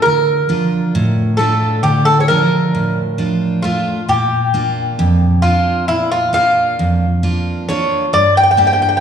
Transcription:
0.02 0.92 D3 medium
0.02 1.34 A#4 medium
0.49 1.21 F3 soft
0.49 1.21 D4 soft
0.49 1.21 F4 medium
0.95 1.81 A2 medium
1.37 2.11 A3 soft
1.37 2.11 D4 soft
1.37 2.11 F4 soft
1.37 1.84 A4 medium
1.83 2.70 D3 medium
1.83 2.04 G4 medium
2.05 2.20 A4 medium
2.20 2.28 C#5 medium
2.28 3.01 F3 medium
2.28 3.01 D4 soft
2.28 3.01 F4 medium
2.28 3.67 A#4 medium
2.75 3.61 A2 medium
3.18 3.90 F3 soft
3.18 3.63 D4 soft
3.18 3.64 F4 soft
3.62 4.00 A3 medium
3.62 3.99 D4 soft
3.62 4.04 F4 medium
3.62 4.00 F4 medium
4.08 4.95 A#2 medium
4.08 5.42 G4 medium
4.54 5.25 A#3 medium
4.54 5.25 D4 soft
4.54 5.26 F4 medium
4.99 5.86 F2 medium
5.42 6.15 A#3 soft
5.42 6.15 D4 soft
5.42 5.84 F4 medium
5.42 6.15 F4 soft
5.88 6.76 A#2 medium
5.88 6.11 E4 medium
6.12 6.32 F4 medium
6.33 7.05 A#3 soft
6.33 7.05 D4 soft
6.33 7.05 F4 medium
6.33 7.64 F5 medium
6.79 7.66 F2 medium
7.23 7.67 A#3 soft
7.23 7.68 D4 soft
7.23 7.69 F4 soft
7.69 8.04 A#3 medium
7.69 8.05 D4 soft
7.69 8.05 F4 medium
7.69 8.10 C#5 medium
8.13 9.00 G2 medium
8.13 8.34 D5 medium
8.37 8.42 G5 loud
8.44 8.50 G5 medium
8.51 8.57 G5 medium
8.57 9.00 A#3 medium
8.57 9.00 D4 soft
8.57 9.00 G4 medium
8.57 8.66 G5 medium
8.67 8.72 G5 medium
8.73 8.81 G5 medium
8.82 8.87 G5 medium
8.89 8.96 G5 medium
8.97 9.00 G5 medium

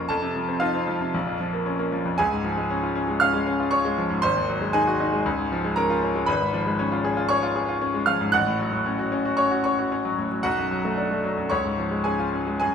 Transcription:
0.00 0.10 F2 medium
0.00 0.12 F3 medium
0.00 0.12 A#3 medium
0.00 0.12 C#4 medium
0.00 0.12 A#4 medium
0.00 0.11 C#5 medium
0.00 0.12 A#5 medium
0.00 0.11 C#6 medium
0.09 1.11 F2 medium
0.09 0.58 A4 medium
0.09 0.61 A5 medium
0.23 0.43 C3 medium
0.36 0.56 F3 medium
0.48 0.69 C4 medium
0.60 0.82 D#4 medium
0.60 1.88 F4 medium
0.60 1.92 F5 medium
0.75 0.96 C4 medium
0.88 1.09 F3 medium
1.01 1.14 C3 medium
1.14 2.15 A#1 medium
1.27 1.48 F2 medium
1.40 1.61 F3 medium
1.54 1.74 A#3 medium
1.66 1.87 C#4 medium
1.79 2.00 A#3 medium
1.92 2.13 F3 medium
2.05 2.18 F2 medium
2.18 4.19 C#2 medium
2.18 3.17 G#4 medium
2.18 3.21 G#5 loud
2.32 2.52 G#2 medium
2.44 2.65 F3 medium
2.57 2.78 G#3 medium
2.70 2.90 C#4 medium
2.83 3.03 F4 medium
2.95 3.16 C#4 medium
3.08 3.29 G#3 medium
3.20 3.42 C#4 medium
3.20 3.69 F5 medium
3.20 3.72 F6 loud
3.34 3.54 G#3 medium
3.47 3.67 C#4 medium
3.60 3.80 F4 medium
3.71 3.93 C#4 medium
3.71 4.19 C#5 medium
3.71 4.22 C#6 loud
3.85 4.05 G#3 medium
3.98 4.18 F3 medium
4.10 4.23 G#2 medium
4.22 5.23 G#1 medium
4.22 4.71 C5 medium
4.22 4.74 C6 loud
4.36 4.57 D#2 medium
4.49 4.69 F#3 medium
4.62 4.82 G#3 medium
4.73 4.95 D#4 medium
4.73 5.73 G#4 medium
4.73 5.77 G#5 loud
4.87 5.08 F#4 medium
5.00 5.21 D#4 medium
5.13 5.26 G#3 medium
5.26 6.25 C#2 medium
5.39 5.59 G#2 medium
5.52 5.72 F3 medium
5.65 5.85 G#3 medium
5.76 5.98 C#4 medium
5.76 6.25 A#4 medium
5.76 6.28 A#5 medium
5.90 6.10 F4 medium
6.03 6.23 C#4 medium
6.15 6.28 G#3 medium
6.26 8.30 G#1 medium
6.26 7.26 B4 medium
6.26 7.29 B5 medium
6.41 6.61 G#2 medium
6.53 6.74 F3 medium
6.67 6.87 G#3 medium
6.79 6.99 C#4 medium
6.92 7.12 F4 medium
7.05 7.25 G#4 medium
7.17 7.38 F4 medium
7.29 7.51 G#4 medium
7.29 8.04 C#5 medium
7.29 8.07 C#6 loud
7.43 7.63 F4 medium
7.56 7.76 G#4 medium
7.69 7.89 F4 medium
7.81 8.02 C#4 medium
7.94 8.15 G#3 medium
8.06 8.28 F3 medium
8.06 8.32 F5 medium
8.06 8.33 F6 medium
8.21 8.34 G#2 medium
8.32 10.40 A1 medium
8.32 9.34 F#5 medium
8.32 9.38 F#6 loud
8.47 8.68 A2 medium
8.60 8.81 F#3 medium
8.72 8.94 A2 medium
8.86 9.07 C#4 medium
8.99 9.20 F#4 medium
9.12 9.33 C#4 medium
9.25 9.46 F#4 medium
9.37 9.59 C#4 medium
9.37 9.63 C#5 medium
9.37 9.62 C#6 medium
9.51 9.73 F#4 medium
9.64 9.86 C#4 medium
9.64 9.90 C#5 medium
9.64 9.91 C#6 medium
9.79 10.00 F#4 medium
9.92 10.13 C#4 medium
10.05 10.26 F#3 medium
10.18 10.39 A2 soft
10.31 10.44 F#3 medium
10.43 11.48 B1 medium
10.43 11.47 F#4 medium
10.43 11.50 F#5 loud
10.58 10.79 F#2 medium
10.71 10.92 F#3 medium
10.85 11.06 A3 medium
10.98 11.19 D4 medium
11.11 11.32 A3 soft
11.24 11.45 F#3 medium
11.37 11.51 F#2 medium
11.50 12.58 C#2 medium
11.50 12.01 C#5 medium
11.50 12.04 C#6 medium
11.64 11.86 G#2 soft
11.78 12.00 F3 medium
11.91 12.13 G#3 soft
12.04 12.27 C#4 medium
12.04 12.57 G#4 medium
12.04 12.58 G#5 medium
12.19 12.41 F4 medium
12.33 12.55 C#4 medium
12.47 12.61 G#3 medium
12.60 12.75 F#2 medium
12.60 12.75 G#4 medium
12.60 12.75 G#5 medium

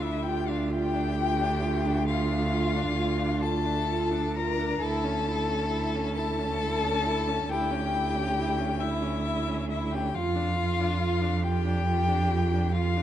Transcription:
0.00 4.78 D2 medium
0.00 0.22 D4 medium
0.00 0.30 E4 medium
0.00 0.25 E5 loud
0.23 0.50 F4 medium
0.23 0.50 G5 loud
0.28 0.51 G4 medium
0.48 0.71 D4 medium
0.48 0.76 F4 medium
0.48 0.72 F5 medium
0.70 0.95 F4 medium
0.70 2.06 G5 loud
0.74 2.08 G4 loud
0.94 1.15 D4 medium
1.16 1.40 F4 medium
1.39 1.63 D4 medium
1.62 1.87 F4 medium
1.85 2.07 D4 medium
2.07 2.32 F4 medium
2.07 3.43 F4 loud
2.07 3.40 F5 loud
2.31 2.54 D4 medium
2.52 2.78 F4 medium
2.76 2.95 D4 medium
2.96 3.20 F4 medium
3.19 3.43 D4 medium
3.42 3.67 F4 medium
3.42 4.38 A4 loud
3.42 4.34 A5 loud
3.65 3.88 D4 medium
3.88 4.13 F4 medium
4.11 4.37 D4 medium
4.36 4.59 F4 medium
4.36 4.80 A#4 loud
4.36 4.84 A#5 loud
4.58 4.81 D4 medium
4.80 10.15 D2 medium
4.80 5.06 E4 medium
4.80 6.12 A4 loud
4.80 6.13 A5 loud
5.04 5.29 C#4 medium
5.28 5.51 E4 medium
5.49 5.69 C#4 medium
5.70 5.96 E4 medium
5.95 6.20 C#4 medium
6.14 7.52 A4 loud
6.14 7.51 A5 loud
6.18 6.41 E4 medium
6.39 6.61 C#4 medium
6.63 6.86 E4 medium
6.84 7.08 C#4 medium
7.06 7.30 E4 medium
7.28 7.49 C#4 medium
7.49 7.73 E4 medium
7.49 8.81 G4 loud
7.49 8.82 G5 loud
7.71 7.95 C#4 medium
7.94 8.17 E4 medium
8.16 8.37 C#4 medium
8.37 8.60 E4 medium
8.59 8.84 C#4 medium
8.81 9.67 E4 medium
8.81 9.04 E4 medium
8.81 9.69 E5 loud
9.02 9.25 C#4 medium
9.26 9.49 E4 medium
9.48 9.72 C#4 medium
9.70 9.94 E4 medium
9.70 9.95 E4 medium
9.70 9.93 E5 medium
9.92 10.13 C#4 medium
9.92 10.16 G4 medium
9.92 10.16 G5 loud
10.13 13.03 F2 medium
10.13 10.36 F4 medium
10.13 11.45 F4 loud
10.13 11.44 F5 loud
10.35 10.58 D4 medium
10.57 10.81 F4 medium
10.79 11.00 D4 medium
11.01 11.23 F4 medium
11.21 11.45 D4 medium
11.43 11.66 F4 medium
11.43 12.76 G4 loud
11.43 12.73 G5 loud
11.65 11.85 D4 medium
11.85 12.09 F4 medium
12.08 12.32 D4 medium
12.30 12.55 F4 medium
12.53 12.72 D4 medium
12.72 12.98 F4 medium
12.72 13.03 F4 medium
12.72 13.03 F5 loud
12.97 13.03 D4 medium

